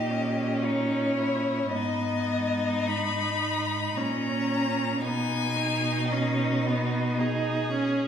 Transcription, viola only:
0.00 0.12 D#4 soft
0.11 1.71 C#4 soft
1.72 2.89 B3 soft
2.88 3.99 D#4 soft
3.97 5.02 C#4 soft
5.02 5.58 B3 soft
5.56 6.14 D#4 soft
6.12 6.68 C#4 soft
6.67 7.20 B3 soft
7.19 7.72 D#4 soft
7.73 8.08 C#4 soft

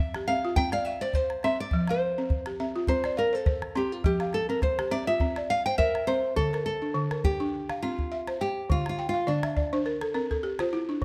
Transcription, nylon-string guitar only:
0.00 0.27 E5 medium
0.28 0.56 F5 medium
0.56 0.72 G5 loud
0.73 0.85 F5 loud
0.85 1.02 E5 medium
1.01 1.15 D5 medium
1.15 1.44 C5 medium
1.44 1.60 E5 medium
1.60 1.87 D5 medium
1.90 2.44 C5 medium
2.88 3.18 C5 medium
3.18 3.35 A#4 medium
3.35 3.76 A4 medium
3.77 3.92 G4 medium
3.92 4.05 F4 medium
4.06 4.35 G4 medium
4.34 4.49 A4 medium
4.50 4.62 A#4 medium
4.63 4.93 C5 medium
4.91 5.07 D5 medium
5.07 5.50 E5 loud
5.50 5.65 F5 medium
5.66 5.78 G5 medium
5.78 6.07 A#4 medium
5.78 6.32 E5 medium
6.07 6.36 C5 loud
6.36 6.64 A4 loud
6.66 7.20 A4 medium
7.25 7.82 G4 medium
7.82 8.41 F4 medium
8.41 8.71 G4 medium
8.71 8.88 F4 medium
8.89 9.08 F4 medium
9.09 9.28 F4 medium
9.28 9.82 D4 medium

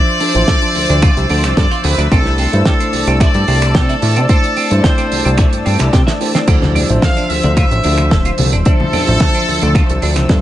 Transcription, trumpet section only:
0.00 1.55 D5 loud
1.56 1.82 D5 loud
1.83 2.11 B4 medium
2.09 2.61 A4 loud
2.64 3.16 A4 medium
3.20 3.75 D5 loud
3.74 4.28 A4 medium
4.29 4.80 A4 loud
4.84 5.39 C5 medium
7.02 7.28 F5 loud
7.29 7.54 E5 loud
7.56 8.34 E5 loud
8.66 10.26 A4 loud

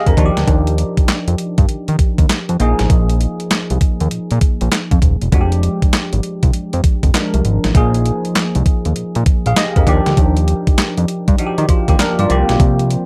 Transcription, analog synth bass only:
0.07 0.15 F2 loud
0.17 0.32 D#2 loud
0.37 0.45 D2 medium
0.48 0.84 D#2 loud
1.28 1.36 F2 medium
1.58 1.66 G2 medium
1.69 1.77 D#3 soft
1.89 1.96 D#3 loud
2.19 2.27 D#2 medium
2.49 2.57 F2 medium
2.60 2.74 A#1 loud
2.80 2.87 A1 medium
2.90 3.27 A#1 loud
3.71 3.78 C2 loud
4.01 4.09 D#2 medium
4.12 4.19 A#2 soft
4.31 4.39 A#2 loud
4.61 4.69 A#1 loud
4.92 4.99 F2 medium
5.02 5.16 D#1 medium
5.22 5.30 E1 loud
5.33 5.69 F1 loud
6.13 6.21 G#1 medium
6.43 6.51 C2 medium
6.54 6.62 F2 soft
6.73 6.81 F2 loud
7.03 7.11 F1 medium
7.34 7.42 C2 medium
7.45 7.59 G#1 medium
7.65 7.72 A1 medium
7.75 8.12 A#1 medium
8.56 8.63 C2 loud
8.86 8.94 D#2 medium
8.97 9.04 A#2 medium
9.16 9.24 A#2 medium
9.46 9.54 A#1 loud
9.76 9.84 F2 loud
9.87 10.01 D#2 loud
10.07 10.15 D2 medium
10.17 10.54 D#2 loud
10.98 11.06 F2 medium
11.28 11.36 G2 medium
11.39 11.46 D#3 soft
11.58 11.66 D#3 loud
11.88 11.96 D#2 medium
12.19 12.27 G2 loud
12.30 12.44 C2 loud
12.49 12.57 B1 medium
12.60 12.97 C2 loud

